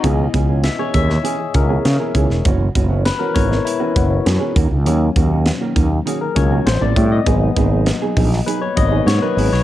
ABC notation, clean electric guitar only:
X:1
M:4/4
L:1/16
Q:1/4=100
K:C#dor
V:1 name="Clean electric guitar"
[E,B,CG] z [E,B,CG] [E,B,CG] z [E,B,CG] [E,B,CG] z [E,B,CG] z2 [E,B,CG] z [E,B,CA] [E,B,CG] z | [E,B,CF] z [E,B,CF] [E,B,CF] z [E,B,CF] [E,B,CF] z2 [E,B,CF] z3 [E,B,CG] [D,A,CF] z | [D,A,CF] z [D,A,CF] [D,A,CF] z [D,A,CF] [D,A,CF] z [D,A,CF] z2 [D,A,CF] z [=G,=CE=A] [G,CE=G] z | [F,B,DG] z [F,B,DG] [F,B,DG] z [F,B,DG] [F,B,DG] z [F,B,DG] z2 [F,B,DG] z [F,B,DA] [F,B,DG] z |]